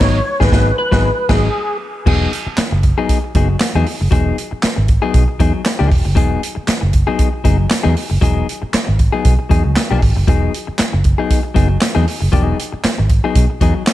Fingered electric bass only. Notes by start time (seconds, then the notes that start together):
0.01 G#1
0.41 G#1
0.52 G#1
0.92 G#1
1.29 G#1
2.07 E1
2.47 muted fingered electric bass stroke
2.58 muted fingered electric bass stroke
2.72 F#1
3.35 F#1
3.75 E2
4.01 F#1
4.12 E1
4.53 muted fingered electric bass stroke
4.64 muted fingered electric bass stroke
4.78 G#1
5.15 B1
5.40 E2
5.81 C#2
5.92 E1
6.06 F#1
6.17 E1
6.57 muted fingered electric bass stroke
6.68 muted fingered electric bass stroke
6.83 F#1
7.45 F#1
7.85 E2
8.11 F#1
8.22 E1
8.63 muted fingered electric bass stroke
8.74 muted fingered electric bass stroke
8.89 G#1
9.25 B1
9.51 E2
9.65 C#2
9.91 B1
10.03 G#1
10.17 F#1
10.28 E1
10.69 muted fingered electric bass stroke
10.80 muted fingered electric bass stroke
10.94 F#1
11.56 F#1
11.96 E2
12.22 F#1
12.33 E1
12.73 muted fingered electric bass stroke
12.84 muted fingered electric bass stroke
12.99 G#1
13.36 B1
13.61 E2